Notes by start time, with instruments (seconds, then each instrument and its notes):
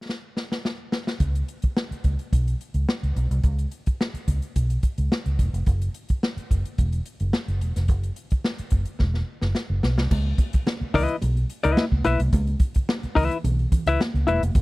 0.09 snare
0.37 snare
0.52 snare
0.65 snare
0.92 snare
1.07 snare
1.20 fingered electric bass C#2, kick, closed hi-hat
1.35 closed hi-hat
1.48 closed hi-hat
1.62 muted fingered electric bass stroke, kick, closed hi-hat
1.77 snare
1.91 muted fingered electric bass stroke, closed hi-hat
2.04 fingered electric bass C#2, kick, closed hi-hat
2.19 closed hi-hat
2.33 fingered electric bass B1, kick, closed hi-hat
2.48 closed hi-hat
2.61 closed hi-hat
2.74 fingered electric bass C#2, closed hi-hat
2.89 snare
3.03 fingered electric bass C#2, closed hi-hat
3.16 fingered electric bass B1, closed hi-hat
3.31 fingered electric bass C2, closed hi-hat
3.43 fingered electric bass C#2, kick, closed hi-hat
3.59 closed hi-hat
3.71 closed hi-hat
3.86 muted fingered electric bass stroke, kick, closed hi-hat
4.01 snare
4.14 muted fingered electric bass stroke, closed hi-hat
4.28 fingered electric bass C#2, kick, closed hi-hat
4.42 closed hi-hat
4.56 fingered electric bass B1, kick, closed hi-hat
4.70 closed hi-hat
4.83 kick, closed hi-hat
4.98 fingered electric bass C#2, closed hi-hat
5.12 snare
5.26 fingered electric bass C#2, closed hi-hat
5.39 fingered electric bass E1, kick, closed hi-hat
5.53 fingered electric bass F1, closed hi-hat
5.66 fingered electric bass F#1, kick, closed hi-hat
5.82 closed hi-hat
5.94 closed hi-hat
6.09 muted fingered electric bass stroke, kick, closed hi-hat
6.23 snare
6.37 muted fingered electric bass stroke, closed hi-hat
6.51 fingered electric bass F#1, kick, closed hi-hat
6.65 closed hi-hat
6.78 fingered electric bass E1, kick, closed hi-hat
6.93 closed hi-hat
7.06 closed hi-hat
7.20 fingered electric bass F#1, closed hi-hat
7.33 snare
7.48 fingered electric bass F#1, closed hi-hat
7.61 fingered electric bass E1, closed hi-hat
7.76 fingered electric bass F1, snare, closed hi-hat
7.88 fingered electric bass F#1, kick, closed hi-hat
8.03 closed hi-hat
8.16 closed hi-hat
8.30 muted fingered electric bass stroke, kick, closed hi-hat
8.44 snare
8.58 muted fingered electric bass stroke, closed hi-hat
8.70 fingered electric bass F#1, kick, closed hi-hat
8.85 closed hi-hat
8.99 fingered electric bass E1, kick, snare
9.14 snare
9.42 fingered electric bass F#1, snare
9.55 snare
9.70 fingered electric bass F#1
9.83 fingered electric bass B1, snare
9.97 fingered electric bass C2, snare
10.11 fingered electric bass C#2, kick, crash, muted conga
10.38 kick, closed hi-hat, muted conga
10.53 muted fingered electric bass stroke, kick, closed hi-hat
10.67 snare, high conga
10.81 muted fingered electric bass stroke
10.94 fingered electric bass C#2, clean electric guitar E4 B4 D#5, kick, open hi-hat, muted conga, low conga
11.08 closed hi-hat
11.22 fingered electric bass B1, closed hi-hat, muted conga
11.37 closed hi-hat
11.50 closed hi-hat
11.63 fingered electric bass C#2, clean electric guitar E4 B4 D#5, closed hi-hat
11.77 snare, high conga
11.92 fingered electric bass C#2, kick
12.04 fingered electric bass B1, clean electric guitar E4 B4 E5, closed hi-hat, high conga
12.20 fingered electric bass C2, closed hi-hat
12.33 fingered electric bass C#2, kick, closed hi-hat, muted conga
12.47 closed hi-hat
12.60 kick, closed hi-hat
12.74 muted fingered electric bass stroke, kick, closed hi-hat
12.89 snare, high conga
13.03 muted fingered electric bass stroke, closed hi-hat
13.15 fingered electric bass C#2, clean electric guitar E4 B4 E5, kick, open hi-hat, muted conga, low conga
13.31 closed hi-hat
13.44 fingered electric bass B1, closed hi-hat, muted conga, low conga
13.59 closed hi-hat
13.72 kick, closed hi-hat, low conga
13.86 fingered electric bass C#2, clean electric guitar E4 B4 E5, closed hi-hat
14.00 snare, high conga
14.14 fingered electric bass C#2, closed hi-hat
14.27 fingered electric bass E1, clean electric guitar E4 B4 E5, closed hi-hat, high conga
14.43 fingered electric bass F1, closed hi-hat
14.55 fingered electric bass F#1, kick, closed hi-hat, muted conga